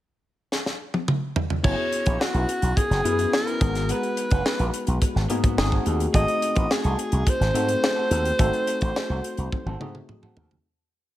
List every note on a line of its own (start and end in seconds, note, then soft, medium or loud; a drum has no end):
0.52 snare medium
0.66 snare soft
0.94 high tom medium
1.08 mid tom medium
1.36 floor tom medium
1.50 floor tom medium
1.63 1.74 F#1 medium
1.63 2.44 B3 medium
1.63 2.45 C#4 medium
1.63 2.45 E4 medium
1.63 1.85 E4 medium
1.63 2.45 F#4 medium
1.63 2.45 G#4 medium
1.63 1.78 G#4 medium
1.63 1.77 B4 medium
1.63 2.22 C#5 loud
1.63 kick loud
1.63 crash medium
1.78 muted clean electric guitar stroke soft
1.92 muted clean electric guitar stroke soft
1.92 closed hi-hat medium
2.06 2.16 A#1 medium
2.06 2.19 E4 soft
2.06 2.19 G#4 medium
2.06 2.21 C#5 medium
2.06 kick medium
2.06 closed hi-hat soft
2.20 2.78 F#4 medium
2.20 muted clean electric guitar stroke soft
2.20 snare loud
2.34 2.44 B1 medium
2.34 2.47 E4 medium
2.34 2.48 G#4 medium
2.34 2.48 B4 medium
2.34 closed hi-hat soft
2.49 muted clean electric guitar stroke soft
2.49 closed hi-hat medium
2.62 2.72 B1 medium
2.62 muted clean electric guitar stroke soft
2.62 closed hi-hat soft
2.76 3.35 G#4 medium
2.76 muted clean electric guitar stroke soft
2.76 kick medium
2.76 closed hi-hat medium
2.90 3.00 F#1 medium
2.90 muted clean electric guitar stroke soft
2.90 snare soft
2.90 closed hi-hat soft
3.04 3.25 F#2 medium
3.04 3.59 B3 medium
3.04 3.61 C#4 medium
3.04 3.19 E4 medium
3.04 3.61 E4 medium
3.04 3.60 F#4 medium
3.04 3.12 G4 medium
3.04 3.19 G#4 medium
3.04 3.18 B4 medium
3.04 closed hi-hat medium
3.12 3.60 G#4 medium
3.19 3.32 E4 soft
3.19 3.33 G#4 medium
3.19 3.33 B4 medium
3.19 closed hi-hat medium
3.33 3.93 A#4 medium
3.33 muted clean electric guitar stroke soft
3.33 snare loud
3.47 3.60 E4 medium
3.47 3.62 G#4 medium
3.47 3.62 B4 medium
3.47 closed hi-hat soft
3.60 3.91 G#1 medium
3.60 4.51 G#3 medium
3.60 4.51 B3 medium
3.60 3.78 B3 medium
3.60 4.51 D#4 medium
3.60 4.51 F#4 medium
3.60 3.75 F#4 medium
3.60 4.51 G#4 medium
3.60 3.74 A#4 medium
3.60 kick loud
3.60 closed hi-hat medium
3.75 muted clean electric guitar stroke soft
3.75 snare soft
3.75 closed hi-hat soft
3.89 4.10 B3 medium
3.89 4.04 F#4 medium
3.89 4.02 A#4 medium
3.89 5.03 B4 medium
3.89 closed hi-hat medium
4.03 muted clean electric guitar stroke soft
4.03 closed hi-hat soft
4.17 muted clean electric guitar stroke soft
4.17 closed hi-hat medium
4.31 4.41 F#1 medium
4.31 4.44 B3 soft
4.31 4.45 F#4 soft
4.31 4.46 B4 medium
4.31 kick medium
4.31 closed hi-hat soft
4.46 snare loud
4.59 4.69 A#1 medium
4.59 4.72 B3 medium
4.59 4.73 F#4 medium
4.59 4.73 A#4 medium
4.59 closed hi-hat soft
4.73 muted clean electric guitar stroke soft
4.73 closed hi-hat medium
4.87 4.97 B1 medium
4.87 muted clean electric guitar stroke soft
4.87 closed hi-hat soft
5.01 muted clean electric guitar stroke soft
5.01 kick medium
5.01 closed hi-hat medium
5.15 5.25 G#1 medium
5.15 muted clean electric guitar stroke soft
5.15 snare soft
5.29 5.59 G#2 medium
5.29 5.58 A#3 medium
5.29 5.43 B3 medium
5.29 5.58 B3 medium
5.29 5.56 D#4 medium
5.29 5.42 F#4 medium
5.29 5.57 F#4 medium
5.29 5.57 G#4 medium
5.29 5.41 A#4 medium
5.29 closed hi-hat medium
5.42 5.56 B3 soft
5.42 5.56 F#4 soft
5.42 5.58 A#4 medium
5.42 kick medium
5.42 closed hi-hat medium
5.57 5.78 G#1 medium
5.57 6.03 A3 medium
5.57 6.03 C4 medium
5.57 6.03 D#4 medium
5.57 6.03 F#4 medium
5.57 6.03 G#4 medium
5.57 muted clean electric guitar stroke soft
5.57 snare loud
5.71 5.84 C4 medium
5.71 5.84 F#4 medium
5.71 5.85 A4 medium
5.71 kick medium
5.85 6.06 D#2 medium
5.85 6.02 C4 medium
5.85 5.99 F#4 medium
5.85 5.98 A4 medium
5.85 closed hi-hat medium
5.99 muted clean electric guitar stroke soft
5.99 closed hi-hat soft
6.13 6.24 G#1 loud
6.13 6.95 A3 medium
6.13 6.35 C4 medium
6.13 6.95 C4 medium
6.13 6.95 D#4 medium
6.13 6.27 F#4 medium
6.13 6.95 F#4 medium
6.13 6.95 G#4 medium
6.13 6.26 A4 medium
6.13 6.74 D#5 loud
6.13 kick loud
6.13 closed hi-hat medium
6.27 muted clean electric guitar stroke soft
6.27 closed hi-hat soft
6.41 muted clean electric guitar stroke soft
6.41 closed hi-hat medium
6.55 6.66 A1 medium
6.55 6.68 C4 soft
6.55 6.69 F#4 medium
6.55 6.70 C5 medium
6.55 kick medium
6.55 closed hi-hat soft
6.70 7.31 G#4 medium
6.70 muted clean electric guitar stroke soft
6.70 snare loud
6.84 6.94 C2 medium
6.84 6.97 C4 medium
6.84 6.98 F#4 medium
6.84 6.98 A4 medium
6.84 closed hi-hat soft
6.98 muted clean electric guitar stroke soft
6.98 closed hi-hat medium
7.12 7.22 C2 medium
7.12 muted clean electric guitar stroke soft
7.12 closed hi-hat soft
7.26 10.10 C5 loud
7.26 muted clean electric guitar stroke soft
7.26 kick medium
7.26 closed hi-hat medium
7.40 7.50 G#1 loud
7.40 muted clean electric guitar stroke soft
7.40 snare soft
7.40 closed hi-hat soft
7.54 7.74 G#2 loud
7.54 8.15 A3 medium
7.54 8.15 C4 medium
7.54 7.76 C4 medium
7.54 8.15 D#4 medium
7.54 8.16 F#4 medium
7.54 7.68 F#4 medium
7.54 8.16 A4 medium
7.54 7.67 A4 medium
7.54 closed hi-hat medium
7.68 muted clean electric guitar stroke soft
7.68 closed hi-hat medium
7.82 muted clean electric guitar stroke soft
7.82 snare loud
7.96 8.09 C4 medium
7.96 8.10 F#4 medium
7.96 8.11 A4 medium
8.11 8.31 D#2 medium
8.11 8.28 C4 medium
8.11 8.25 F#4 medium
8.11 8.24 A4 medium
8.11 closed hi-hat medium
8.25 muted clean electric guitar stroke medium
8.25 closed hi-hat medium
8.39 8.49 G#1 loud
8.39 9.20 A3 medium
8.39 8.60 C4 medium
8.39 9.21 C4 medium
8.39 9.21 D#4 medium
8.39 8.53 F#4 medium
8.39 9.21 F#4 medium
8.39 9.21 A4 medium
8.39 8.52 A4 loud
8.39 kick loud
8.39 closed hi-hat medium
8.53 muted clean electric guitar stroke soft
8.53 closed hi-hat soft
8.67 muted clean electric guitar stroke soft
8.67 closed hi-hat medium
8.81 8.92 A1 medium
8.81 8.95 C4 medium
8.81 8.95 F#4 medium
8.81 8.96 C5 medium
8.81 kick medium
8.81 closed hi-hat soft
8.96 muted clean electric guitar stroke soft
8.96 snare loud
9.09 9.20 C2 medium
9.09 9.23 C4 medium
9.09 9.24 F#4 medium
9.09 9.24 A4 medium
9.24 muted clean electric guitar stroke soft
9.24 closed hi-hat medium
9.37 9.48 C2 medium
9.37 muted clean electric guitar stroke soft
9.37 closed hi-hat medium
9.52 muted clean electric guitar stroke soft
9.52 kick medium
9.52 high tom medium
9.66 9.76 G#1 medium
9.66 9.79 C4 medium
9.66 9.80 F#4 medium
9.66 9.81 A4 medium
9.66 high tom soft
9.80 10.00 G#2 loud
9.80 10.41 A3 medium
9.80 9.97 C4 medium
9.80 10.41 C4 medium
9.80 10.41 D#4 medium
9.80 10.42 F#4 medium
9.80 9.95 F#4 medium
9.80 10.42 G#4 medium
9.80 9.94 A4 medium
9.80 mid tom medium
9.95 muted clean electric guitar stroke soft
9.95 mid tom medium
10.09 muted clean electric guitar stroke soft
10.09 mid tom medium
10.22 10.35 C4 medium
10.22 10.36 F#4 medium
10.22 10.37 A4 medium
10.22 mid tom medium
10.36 10.57 D#2 medium
10.36 10.53 C4 medium
10.36 10.51 F#4 medium
10.36 10.50 A4 medium
10.36 floor tom medium
10.51 muted clean electric guitar stroke soft
10.51 floor tom medium